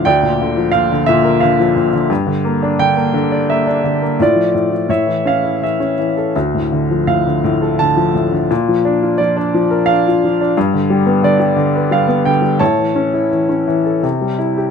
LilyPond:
<<
  \new Staff \with { instrumentName = "Upright piano" } { \time 3/4 \key d \minor \tempo 4 = 86 << { g''4 f''8 e''8 f''8. r16 | r4 g''4 e''4 | d''4 e''8 f''8 e''8. r16 | r4 f''4 a''4 |
r4 d''4 f''4 | r4 d''4 f''8 g''8 | a''2~ a''8 r8 | } \\ { d''4. r4. | r2. | f'4 cis''4. r8 | r2. |
r2. | r2. | cis''2~ cis''8 r8 | } >> }
  \new Staff \with { instrumentName = "Upright piano" } { \clef bass \time 3/4 \key d \minor d,16 bes,16 d16 f16 bes,16 d16 bes,16 bes'16 d16 f16 bes,16 d16 | g,16 d16 bes16 d'16 d16 bes16 d16 d''16 bes16 d'16 d16 bes16 | a,16 f16 a,16 f16 a,16 e16 cis'16 e'16 e16 cis'16 e16 a'16 | d,16 a,16 d16 f16 a,16 d16 a,16 a'16 d16 f16 a,16 d16 |
bes,16 f16 d'16 f'16 f16 d'16 f16 bes'16 d'16 f'16 f16 d'16 | g,16 d16 g16 b16 d16 g16 d16 b'16 g16 b16 d16 g16 | a,16 e16 cis'16 e'16 e16 cis'16 e16 a'16 c16 g16 e'16 g'16 | }
>>